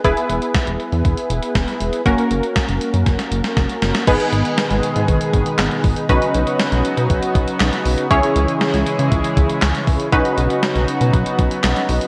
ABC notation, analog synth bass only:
X:1
M:4/4
L:1/16
Q:1/4=119
K:G#m
V:1 name="Analog synth bass" clef=bass
E,,, z E,,, z2 E,,, z E,, E,,, z E,,, z E,,, z E,,, z | F,,, z F,,, z2 F,,, z F,, F,,, z F,,, z F,,, z F,,, z | G,,, z G,,, z2 G,,, z G,, G,,, z G,,, z G,,, z G,,, z | B,,, z B,,, z2 B,,, z B,, B,,, z B,,, z B,,, z B,,, z |
C,, z C,, z2 C,, z C, C,, z C,, z C,, z C,, z | B,,, z B,,, z2 B,,, z B,, B,,, z B,,, z B,,, z B,,, z |]